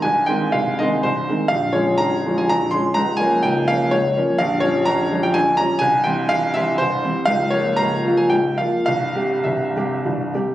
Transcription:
X:1
M:3/4
L:1/16
Q:1/4=122
K:Bbdor
V:1 name="Grand piano"
a2 g2 f2 e2 c4 | f2 d2 b3 a b2 c'2 | b2 a2 g2 f2 d4 | [K:Cphr] f2 d2 b3 g a2 b2 |
a2 g2 f2 =e2 c4 | f2 d2 b3 a g2 f2 | f4 =e4 z4 |]
V:2 name="Grand piano" clef=bass
[C,,,C,,]2 [E,A,C]2 [C,,,C,,]2 [E,A,C]2 [C,,,C,,]2 [E,A,C]2 | [B,,,,B,,,]2 [F,A,D]2 [B,,,,B,,,]2 [F,A,D]2 [B,,,,B,,,]2 [F,A,D]2 | [D,,,D,,]2 [F,B,D]2 [D,,,D,,]2 [F,B,D]2 [D,,,D,,]2 [F,B,D]2 | [K:Cphr] [B,,,,B,,,]2 [F,G,D]2 [B,,,,B,,,]2 [F,G,D]2 [B,,,,B,,,]2 [F,G,D]2 |
[C,,,C,,]2 [=E,G,C]2 [C,,,C,,]2 [E,G,C]2 [C,,,C,,]2 [E,G,C]2 | [D,,,D,,]2 [F,B,F]2 [D,,,D,,]2 [F,B,F]2 [D,,,D,,]2 [F,B,F]2 | [C,,,C,,]2 [C,G,G]2 [C,,,C,,]2 [C,G,G]2 [C,,,C,,]2 [C,G,G]2 |]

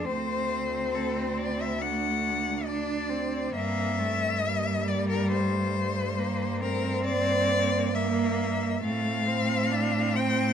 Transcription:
X:1
M:4/4
L:1/16
Q:1/4=68
K:Gdor
V:1 name="Cello"
c4 A c d e ^f4 d4 | e6 d B c6 B2 | d4 e4 f6 g2 |]
V:2 name="Cello"
C8 A,4 D2 C2 | B,2 A,2 G,8 B,2 C2- | C4 B,4 A,2 C2 D2 C2 |]
V:3 name="Cello"
A,4 C4 D2 D6 | C4 B,4 A,4 G,2 A,2 | B,8 C8 |]
V:4 name="Cello" clef=bass
D,,16 | G,,16- | G,,8 A,,8 |]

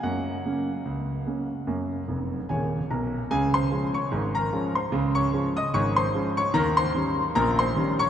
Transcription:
X:1
M:2/4
L:1/16
Q:"Swing 16ths" 1/4=74
K:F#
V:1 name="Grand piano"
f8- | f4 [Gcg]2 [Aa]2 | [K:Db] [Aa] [cc']2 [dd']2 [Bb]2 [cc']- | [cc'] [dd']2 [ee'] [dd'] [cc']2 [dd'] |
[Bb] [cc']3 [Bb] [cc']2 [dd'] |]
V:2 name="Grand piano" clef=bass
[F,,A,]2 [C,A,C]2 C,,2 [C,A,C]2 | [F,,A,]2 [E,,,E,,]2 [D,,,D,,]2 B,,,2 | [K:Db] [D,,D,]2 [F,A,D]2 [A,,,A,,]2 [F,A,D]2 | [D,,D,]2 [F,A,D]2 [A,,,A,,]2 [F,A,D]2 |
[E,,E,]2 [E,=G,D]2 [B,,,B,,]2 [E,G,D]2 |]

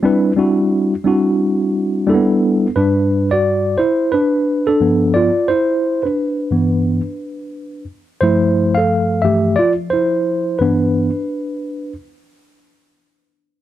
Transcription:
X:1
M:4/4
L:1/16
Q:"Swing 16ths" 1/4=88
K:G
V:1 name="Tine electric piano"
[G,CDEB]2 [G,CDEF]3 z [G,CDEF]6 [G,_B,=B,DEA]4 | B3 [Fd]3 [Ec]2 [DB]3 [DA]3 [=Fd]2 | [Ec]3 [DB]8- [DB]3 z2 | [Ec]3 [A=f]3 [Ge]2 [=Fd]2 [Ec]4 [DB]2- |
[DB]6 z8 z2 |]
V:2 name="Tine electric piano" clef=bass
z16 | [G,,G,D]6 z6 [G,,=F,B,]2 z2 | z6 [G,,E,B,]2 z8 | [G,,=F,A,]6 [G,,E,A,]2 z6 [G,,E,B,]2 |
z16 |]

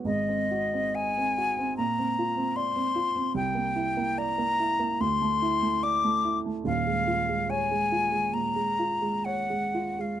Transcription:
X:1
M:4/4
L:1/16
Q:1/4=72
K:Ebm
V:1 name="Flute"
e4 a4 b4 =c'4 | =g4 b4 =c'4 =d'3 z | f4 a4 b4 g3 f |]
V:2 name="Grand piano"
[A,,,A,,] =C G C e C G C B,, C F C =d C F C | =C,, B, =E B, =d B, E B, =D,, =A, E A, d A, E A, | [E,,,E,,] A, F A, d A, F A, B,, A, F A, d A, F A, |]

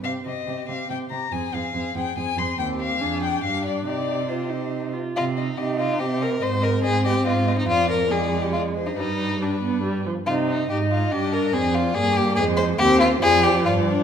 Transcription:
X:1
M:3/4
L:1/16
Q:1/4=141
K:Cm
V:1 name="Violin"
f2 e4 f2 g2 b2 | a2 f4 g2 a2 c'2 | g2 f4 g2 f2 d2 | d4 c6 z2 |
e2 e2 e2 e2 e2 e2 | e2 e2 e2 e2 e2 e2 | d4 d4 d2 c2 | =B4 B6 z2 |
c4 e8 | d8 c4 | c4 d4 d4 |]
V:2 name="Violin"
G2 G2 G2 G2 G2 G2 | A2 A2 A2 A2 A2 A2 | G4 A4 G4 | G4 G6 z2 |
F2 E2 G2 F2 G2 B2 | c2 B2 A2 G2 F3 E | F2 B2 A3 G F3 E | E4 D4 z4 |
F2 E2 G2 F2 G2 B2 | A2 F2 A2 G2 A2 c2 | G2 F2 A2 G2 F2 D2 |]
V:3 name="Viola"
C2 C2 C2 C2 C2 C2 | C2 C2 C2 C2 C2 C2 | C4 D4 D4 | E4 F2 E4 F2 |
z4 E4 C4- | C12- | C4 A,8 | G,4 G,2 =B,2 G,2 F,2 |
E4 E4 D4 | C4 B,4 A,4 | C4 F,8 |]
V:4 name="Cello" clef=bass
C,2 C,2 C,2 C,2 C,2 C,2 | F,,2 F,,2 F,,2 F,,2 F,,2 F,,2 | E,,4 F,,4 G,,4 | C,8- C,2 z2 |
C,4 C,4 C,4 | A,,4 A,,4 A,,4 | F,,12 | G,,8- G,,2 z2 |
C,4 A,,4 G,,4 | F,,4 G,,4 F,,4 | E,,4 F,,4 G,,4 |]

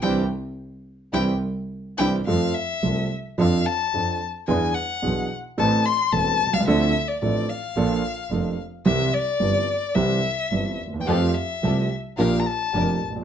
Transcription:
X:1
M:4/4
L:1/16
Q:1/4=109
K:F
V:1 name="Violin"
g2 z6 g2 z4 g2 | f2 e4 z2 f2 a4 z2 | ^g2 _g4 z2 a2 c'2 a3 f | e3 d d2 f8 z2 |
e2 d6 e6 z3/2 g/2 | f3/2 f/2 e4 z2 f3/2 b/2 a4 z2 |]
V:2 name="String section"
[DEG]2 z6 [DEG]2 z4 [DEG]2 | z16 | z16 | z16 |
z16 | [FGA]2 z2 [FGA]2 z2 [DGB]2 z2 [DGB]2 z2 |]
V:3 name="Grand piano" clef=bass
[E,G,C]2 z6 [E,G,C]2 z4 [E,G,C]2 | [F,,F,A,CA]2 z2 [C,,C,F,A,CA]2 z2 [F,,F,CDA]2 z2 [F,,F,CDA]2 z2 | [E,,E,=B,D^G]2 z2 [=B,,,=B,,E,B,DG]2 z2 [A,,,A,,E,A,CA]2 z2 [E,,,E,,E,A,CA]2 z/2 B,,,/2 C,,/2 _D,,/2 | [D,,D,F,CDA]2 z2 [A,,,A,,F,CDA]2 z2 [B,,,B,,F,B,DA]2 z2 [F,,,F,,F,B,DA]2 z2 |
[C,,C,E,G,CG]2 z2 [G,,,G,,E,G,CG]2 z2 [C,,C,E,G,CG]2 z2 [G,,,G,,E,G,CG]2 z/2 D,,/2 _E,,/2 =E,,/2 | [F,,F,A,CG]2 z2 [C,,C,F,A,CG]2 z2 [B,,,B,,F,B,DG]2 z2 [F,,,F,,F,B,DG]2 z/2 A,,,/2 B,,,/2 z/2 |]
V:4 name="Double bass" clef=bass
C,,2 z6 C,,2 z4 C,,2 | F,,2 z2 C,,2 z2 F,,2 z2 F,,2 z2 | E,,2 z2 =B,,,2 z2 A,,,2 z2 E,,,2 C,,2 | D,,2 z2 A,,,2 z2 B,,,2 z2 F,,,2 z2 |
C,,2 z2 G,,,2 z2 C,,2 z2 G,,,2 _E,,2 | F,,2 z2 C,,2 z2 B,,,2 z2 F,,,2 B,,,2 |]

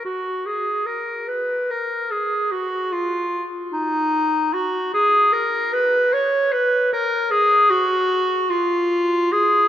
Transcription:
X:1
M:6/8
L:1/8
Q:3/8=49
K:F#
V:1 name="Clarinet"
F G A B A G | F E z D2 F | [K:Abdor] A B c d c B | A G2 F2 A |]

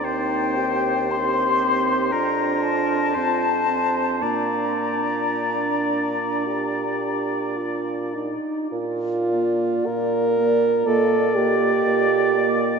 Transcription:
X:1
M:4/4
L:1/8
Q:1/4=56
K:Bb
V:1 name="Flute"
g2 c'2 b a3 | b6 z2 | z d2 d e e2 e |]
V:2 name="Oboe"
c4 B2 c2 | d6- d z | z4 d4 |]
V:3 name="French horn"
C2 C2 D2 C C | B,2 D2 G2 F E | F2 B2 A G3 |]
V:4 name="Clarinet"
E G G2 F2 F2 | D6- D z | z B,2 B, B, B,2 B, |]
V:5 name="Bassoon" clef=bass
E,,4 F,,2 F,,2 | B,,6- B,, z | B,,2 B,,2 B,,2 B,,2 |]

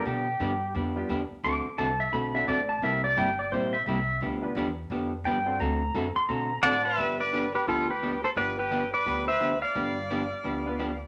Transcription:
X:1
M:4/4
L:1/16
Q:"Swing" 1/4=173
K:Gmix
V:1 name="Pedal steel guitar"
G8 z8 | d'4 a2 e2 b2 e2 d2 a2 | e2 d2 g2 d2 c2 e2 e4 | z12 g4 |
_b6 c'2 b4 a4 | z16 | z16 | z16 |]
V:2 name="Electric slide guitar"
z16 | z16 | z16 | z16 |
z12 [d^f]2 [Be]2- | [Be]2 [Bd]4 [GB]2 [FA]2 [GB]4 [Ac]2 | [Bd]2 [GB]4 [Bd]4 [ce]4 [df]2- | [df]12- [df]2 z2 |]
V:3 name="Fiddle"
z16 | z16 | z16 | z16 |
z12 d2 B2- | B2 B4 G2 F2 G4 A2 | B2 G4 B4 B4 d2- | d12- d2 z2 |]
V:4 name="Upright piano"
z8 z2 [G,B,DFG]2 z4 | z8 z2 [A,CD^FA]2 z4 | [_B,CEG_B]8- [B,CEGB]2 z6 | z2 [B,DFGB]2 z8 z2 [CD^FAc]2 |
z12 [CD^FAc]2 z2 | [B,DFGB]8- [B,DFGB]2 z6 | [B,DFGB]2 z12 z2 | z8 z2 [B,DFGB]2 z4 |]
V:5 name="Hollow-body jazz guitar"
[D,F,B,DG]2 z2 [D,F,B,DG] z3 [D,F,B,DG]2 z2 [D,F,B,DG] z3 | [D,A,C^FA]2 z2 [D,A,CFA] z3 [D,A,CFA]2 z2 [D,A,CFA] z3 | [C,G,_B,EG]2 z2 [C,G,B,EG] z3 [C,G,B,EG]2 z2 [C,G,B,EG] z3 | [D,F,B,DG]2 z2 [D,F,B,DG] z3 [D,F,B,DG]2 z2 [D,F,B,DG] z3 |
[D,A,C^FA]2 z2 [D,A,CFA] z3 [D,A,CFA]2 z2 [D,A,CFA] z3 | [D,F,B,DG]2 z2 [D,F,B,DG] z3 [D,F,B,DG]2 z2 [D,F,B,DG] z3 | [D,F,B,DG]2 z2 [D,F,B,DG] z3 [D,F,B,DG]2 z2 [D,F,B,DG] z3 | [D,F,B,DG]2 z2 [D,F,B,DG] z3 [D,F,B,DG]2 z2 [D,F,B,DG] z3 |]
V:6 name="Upright bass" clef=bass
B,,4 G,,4 F,,4 E,,2 z2 | D,,2 z2 C,,4 B,,,4 A,,,4 | C,,4 G,,,4 _B,,,4 C,,4 | D,,4 E,,4 F,,4 G,,4 |
D,,4 ^F,,2 z2 B,,4 A,,4 | G,,,8 D,,8 | G,,,8 D,,8 | G,,,8 D,,8 |]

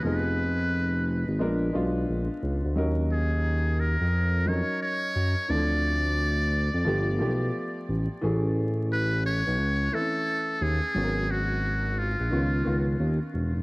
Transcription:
X:1
M:4/4
L:1/16
Q:"Swing 16ths" 1/4=88
K:D#m
V:1 name="Muted trumpet"
_c8 z8 | z2 G4 A4 c2 c4 | =d12- d2 z2 | z4 B2 c4 =A4 G2- |
G2 F4 E6 z4 |]
V:2 name="Grand piano"
[=F,_C_E_A]8 [G,B,=D^A]2 [G,B,D^E]6 | [F,CDA]8 z2 [F,CDA]6 | [=E,=F,=C=D=A]8 [F,=A,B,=G]2 [F,A,^A,B,G]6 | [=E,=A,CG]8 z2 [E,A,^B,C=E]6 |
[F,B,CGA]8 [D,B,CE]2 [D,B,CE]6 |]
V:3 name="Analog synth bass" clef=bass
=F,,,6- F,,, _A,,, ^A,,,2 B,,,2 A,,, z C,, =D,, | D,,6- D,, E,,4 z3 F,, z | =D,,6- D,, =F,, =G,,,2 B,,,2 z2 =A,,, z | =A,,,6- A,,, B,,, C,,2 z4 D,, z |
G,,,6- G,,, A,,, C,,2 C,,2 D,, z =E,,, ^E,,, |]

